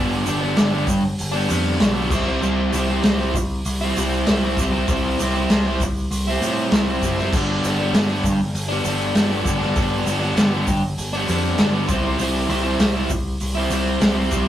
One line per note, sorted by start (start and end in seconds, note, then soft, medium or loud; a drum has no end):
0.00 0.21 G1 medium
0.00 0.54 G2 loud
0.00 0.24 D3 loud
0.00 0.26 G3 loud
0.00 0.27 B3 loud
0.00 0.28 D4 loud
0.25 0.53 G1 medium
0.25 0.56 D3 medium
0.25 0.44 G3 medium
0.25 0.41 B3 medium
0.25 0.39 D4 medium
0.25 open hi-hat medium
0.25 shaker loud
0.40 0.58 B3 medium
0.40 0.59 D4 medium
0.45 0.57 G3 medium
0.55 0.84 G1 loud
0.55 1.03 G2 medium
0.55 0.87 D3 loud
0.55 0.75 G3 loud
0.55 0.72 B3 loud
0.55 snare loud
0.55 open hi-hat medium
0.55 shaker medium
0.60 0.71 D4 loud
0.72 0.88 G3 medium
0.72 0.88 B3 medium
0.72 0.88 D4 medium
0.87 1.14 G1 medium
0.87 muted overdriven electric guitar stroke soft
0.87 kick medium
0.87 open hi-hat medium
0.87 shaker medium
1.18 1.46 G1 medium
1.18 open hi-hat medium
1.18 shaker medium
1.32 1.49 B3 medium
1.32 1.50 D4 medium
1.36 1.48 G3 medium
1.47 1.76 F2 medium
1.47 1.79 D3 medium
1.47 1.81 G3 medium
1.47 1.80 B3 medium
1.47 open hi-hat medium
1.47 shaker medium
1.52 1.81 D4 medium
1.66 shaker soft
1.78 2.07 B1 medium
1.78 2.09 G2 medium
1.78 2.09 D3 loud
1.78 1.99 G3 medium
1.78 1.95 B3 loud
1.78 snare loud
1.78 open hi-hat medium
1.78 shaker medium
1.83 1.93 D4 loud
1.95 2.10 B3 medium
1.95 2.09 D4 medium
1.99 2.10 G3 medium
2.09 2.37 C2 medium
2.09 2.39 C3 loud
2.09 2.29 G3 loud
2.09 2.27 C4 loud
2.09 kick loud
2.09 crash loud
2.09 shaker medium
2.14 2.25 E4 loud
2.25 2.42 C4 medium
2.25 2.44 E4 medium
2.29 2.41 G3 medium
2.40 2.69 C2 medium
2.40 2.70 C3 medium
2.40 2.72 G3 loud
2.40 2.73 C4 loud
2.40 shaker medium
2.44 2.75 E4 loud
2.71 2.99 C2 medium
2.71 3.01 C3 medium
2.71 2.92 G3 medium
2.71 2.90 C4 medium
2.71 open hi-hat medium
2.71 shaker medium
2.75 2.87 E4 medium
2.88 3.04 C4 medium
2.88 3.06 E4 medium
2.92 3.02 G3 medium
3.02 3.30 C2 loud
3.02 3.35 C3 medium
3.02 3.21 G3 loud
3.02 3.19 C4 loud
3.02 snare loud
3.02 open hi-hat medium
3.02 shaker medium
3.06 3.17 E4 loud
3.17 3.36 C4 medium
3.17 3.36 E4 medium
3.22 3.36 G3 medium
3.34 3.60 C2 medium
3.34 muted overdriven electric guitar stroke soft
3.34 kick medium
3.34 open hi-hat medium
3.34 shaker medium
3.65 3.91 C2 medium
3.65 open hi-hat medium
3.65 shaker medium
3.81 3.99 C4 medium
3.81 4.00 E4 medium
3.86 3.98 G3 medium
3.96 4.22 C2 medium
3.96 4.26 C3 medium
3.96 4.28 G3 medium
3.96 open hi-hat medium
3.96 shaker medium
4.00 4.29 C4 medium
4.00 4.30 E4 medium
4.12 shaker soft
4.26 4.54 C2 loud
4.26 4.57 C3 loud
4.26 4.46 G3 loud
4.26 4.44 C4 loud
4.26 snare loud
4.26 open hi-hat medium
4.26 shaker medium
4.32 4.42 E4 loud
4.43 4.59 G3 medium
4.43 4.60 C4 medium
4.43 4.61 E4 medium
4.57 4.83 C2 medium
4.57 4.86 C3 medium
4.57 4.76 G3 medium
4.57 4.73 C4 medium
4.57 kick medium
4.57 open hi-hat medium
4.57 shaker loud
4.62 4.71 E4 medium
4.72 4.89 C4 medium
4.72 4.90 E4 medium
4.77 4.89 G3 medium
4.87 5.14 C2 medium
4.87 5.18 C3 medium
4.87 5.20 G3 loud
4.87 5.21 C4 medium
4.87 kick loud
4.87 open hi-hat medium
4.87 shaker medium
4.91 5.22 E4 loud
5.19 5.45 C2 medium
5.19 5.48 C3 medium
5.19 5.38 G3 medium
5.19 5.35 C4 medium
5.19 open hi-hat medium
5.19 shaker loud
5.23 5.33 E4 medium
5.34 5.51 C4 medium
5.34 5.52 E4 medium
5.34 shaker soft
5.39 5.51 G3 medium
5.49 5.76 C2 medium
5.49 5.81 C3 medium
5.49 5.70 G3 medium
5.49 5.67 C4 medium
5.49 5.65 E4 medium
5.49 snare loud
5.49 open hi-hat medium
5.49 shaker medium
5.66 5.82 C4 medium
5.66 5.82 E4 medium
5.70 5.83 G3 medium
5.80 6.06 C2 medium
5.80 muted overdriven electric guitar stroke medium
5.80 kick medium
5.80 open hi-hat medium
5.80 shaker loud
5.97 shaker soft
6.11 6.36 C2 medium
6.11 open hi-hat medium
6.11 shaker medium
6.28 6.44 C4 medium
6.28 6.46 E4 medium
6.32 6.44 G3 medium
6.41 6.67 A2 medium
6.41 6.70 C3 medium
6.41 6.73 G3 medium
6.41 open hi-hat medium
6.41 shaker medium
6.46 6.74 C4 medium
6.46 6.75 E4 medium
6.59 shaker soft
6.71 6.97 C2 loud
6.71 7.01 C3 loud
6.71 6.91 G3 loud
6.71 6.88 C4 loud
6.71 snare loud
6.71 open hi-hat medium
6.71 shaker medium
6.76 6.86 E4 loud
6.87 7.04 C4 medium
6.87 7.05 E4 medium
6.92 7.03 G3 medium
7.02 7.28 F#1 medium
7.02 7.31 C3 medium
7.02 7.22 G3 medium
7.02 7.19 C4 medium
7.02 kick medium
7.02 open hi-hat medium
7.02 shaker medium
7.06 7.17 E4 medium
7.18 7.32 C4 medium
7.18 7.31 E4 medium
7.18 snare soft
7.18 shaker soft
7.23 7.36 G3 medium
7.33 7.58 G1 medium
7.33 7.94 G2 medium
7.33 7.62 D3 loud
7.33 7.65 G3 loud
7.33 kick loud
7.33 crash loud
7.33 shaker medium
7.37 7.66 B3 medium
7.37 7.67 D4 loud
7.63 7.89 G1 medium
7.63 7.94 D3 medium
7.63 7.81 G3 medium
7.63 7.79 B3 medium
7.63 open hi-hat medium
7.63 shaker medium
7.68 7.77 D4 medium
7.77 7.96 B3 medium
7.77 7.97 D4 medium
7.82 7.96 G3 medium
7.93 8.19 G1 medium
7.93 8.39 G2 medium
7.93 8.24 D3 medium
7.93 8.13 G3 medium
7.93 8.10 B3 loud
7.93 snare loud
7.93 open hi-hat medium
7.93 shaker medium
7.98 8.07 D4 loud
8.09 8.24 B3 medium
8.09 8.25 D4 medium
8.13 8.25 G3 medium
8.24 8.49 G1 medium
8.24 muted overdriven electric guitar stroke soft
8.24 kick medium
8.24 open hi-hat medium
8.24 shaker medium
8.54 8.79 G1 medium
8.54 open hi-hat medium
8.54 shaker medium
8.68 8.86 B3 medium
8.68 8.87 D4 medium
8.72 8.85 G3 medium
8.84 9.10 G1 medium
8.84 9.14 D3 medium
8.84 9.16 G3 medium
8.84 9.16 B3 medium
8.84 9.18 D4 medium
8.84 open hi-hat medium
8.84 shaker medium
9.01 shaker soft
9.14 9.40 G1 medium
9.14 9.60 G2 medium
9.14 9.43 D3 medium
9.14 9.34 G3 loud
9.14 9.31 B3 loud
9.14 snare loud
9.14 open hi-hat medium
9.14 shaker medium
9.19 9.28 D4 loud
9.29 9.46 B3 medium
9.29 9.47 D4 medium
9.34 9.45 G3 medium
9.44 9.71 G1 medium
9.44 9.75 D3 medium
9.44 9.62 G3 medium
9.44 9.60 B3 medium
9.44 9.57 D4 medium
9.44 kick medium
9.44 open hi-hat medium
9.44 shaker loud
9.58 9.77 B3 medium
9.58 9.78 D4 medium
9.58 snare soft
9.63 9.77 G3 medium
9.74 10.02 G1 medium
9.74 10.34 G2 medium
9.74 10.04 D3 medium
9.74 10.07 G3 medium
9.74 10.07 B3 loud
9.74 kick loud
9.74 open hi-hat medium
9.74 shaker medium
9.79 10.08 D4 loud
10.06 10.31 G1 medium
10.06 10.35 D3 medium
10.06 10.24 G3 medium
10.06 10.21 B3 medium
10.06 10.19 D4 medium
10.06 open hi-hat medium
10.06 shaker loud
10.20 10.37 B3 medium
10.20 10.38 D4 medium
10.25 10.37 G3 medium
10.35 10.62 G1 medium
10.35 10.81 G2 loud
10.35 10.67 D3 loud
10.35 10.55 G3 loud
10.35 10.52 B3 loud
10.35 snare loud
10.35 open hi-hat medium
10.35 shaker medium
10.39 10.50 D4 loud
10.51 10.68 B3 medium
10.51 10.68 D4 medium
10.55 10.69 G3 medium
10.67 10.93 G1 medium
10.67 muted overdriven electric guitar stroke medium
10.67 kick medium
10.67 open hi-hat medium
10.67 shaker loud
10.98 11.23 G1 medium
10.98 open hi-hat medium
10.98 shaker medium
11.13 11.29 G3 medium
11.13 11.29 B3 medium
11.13 11.30 D4 medium
11.27 11.54 F2 medium
11.27 11.58 D3 medium
11.27 11.60 G3 medium
11.27 11.60 B3 medium
11.27 open hi-hat medium
11.27 shaker medium
11.31 11.61 D4 medium
11.43 shaker soft
11.58 11.84 G1 loud
11.58 11.87 G2 medium
11.58 11.87 D3 medium
11.58 11.76 G3 loud
11.58 11.73 B3 loud
11.58 snare loud
11.58 open hi-hat medium
11.58 shaker medium
11.62 11.72 D4 loud
11.73 11.89 G3 medium
11.73 11.87 B3 medium
11.73 11.86 D4 medium
11.88 12.14 C2 medium
11.88 12.18 C3 medium
11.88 12.07 G3 loud
11.88 12.05 C4 loud
11.88 12.03 E4 loud
11.88 kick loud
11.88 open hi-hat medium
11.88 shaker medium
12.03 12.21 C4 medium
12.03 12.22 E4 medium
12.08 12.19 G3 medium
12.18 12.44 C2 medium
12.18 12.47 C3 loud
12.18 12.49 G3 loud
12.18 12.50 C4 loud
12.18 open hi-hat medium
12.18 shaker medium
12.23 12.51 E4 loud
12.48 12.75 C2 loud
12.48 12.78 C3 medium
12.48 12.67 G3 medium
12.48 12.65 C4 medium
12.48 12.63 E4 medium
12.48 open hi-hat medium
12.63 12.81 C4 medium
12.63 12.82 E4 medium
12.67 12.80 G3 medium
12.79 13.05 C2 medium
12.79 13.10 C3 medium
12.79 12.97 G3 medium
12.79 12.96 C4 medium
12.79 12.94 E4 loud
12.79 snare loud
12.79 open hi-hat medium
12.79 shaker medium
12.94 13.10 G3 medium
12.94 13.11 C4 medium
12.94 13.11 E4 medium
13.10 13.36 C2 medium
13.10 muted overdriven electric guitar stroke medium
13.10 kick medium
13.10 open hi-hat medium
13.10 shaker medium
13.40 13.66 C2 loud
13.40 open hi-hat medium
13.40 shaker medium
13.55 13.71 G3 medium
13.55 13.72 C4 medium
13.55 13.73 E4 medium
13.70 13.96 C2 medium
13.70 13.99 C3 medium
13.70 14.02 G3 medium
13.70 14.02 C4 medium
13.70 open hi-hat medium
13.70 shaker medium
13.74 14.03 E4 medium
13.86 shaker soft
14.00 14.27 C2 loud
14.00 14.30 C3 loud
14.00 14.19 G3 loud
14.00 14.16 C4 loud
14.00 snare loud
14.00 open hi-hat medium
14.00 shaker medium
14.05 14.14 E4 loud
14.15 14.32 C4 medium
14.15 14.33 E4 medium
14.19 14.32 G3 medium
14.31 14.48 C2 medium
14.31 14.48 C3 medium
14.31 14.48 G3 medium
14.31 14.47 C4 medium
14.31 14.45 E4 medium
14.31 kick medium
14.31 open hi-hat medium
14.31 shaker medium